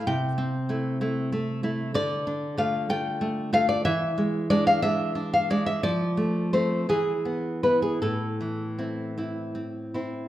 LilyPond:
\new Staff \with { instrumentName = "Nylon-string guitar" } { \time 6/8 \key a \minor \tempo 4. = 60 << { g''2~ g''8 r8 | d''4 f''8 g''4 f''16 d''16 | e''4 d''16 f''16 e''8. f''16 d''16 e''16 | d''4 c''8 gis'4 b'16 gis'16 |
a'2~ a'8 r8 | } \\ { c8 c'8 <a e'>8 <a e'>8 a8 <a e'>8 | d8 d'8 <a f'>8 <a f'>8 a8 <a f'>8 | e8 gis8 <gis d'>8 <gis d'>8 d'8 <gis d'>8 | f8 a8 <a c'>8 e8 b8 <b e'>8 |
a,8 e8 <c' e'>8 <c' e'>8 c'8 <c' e'>8 | } >> }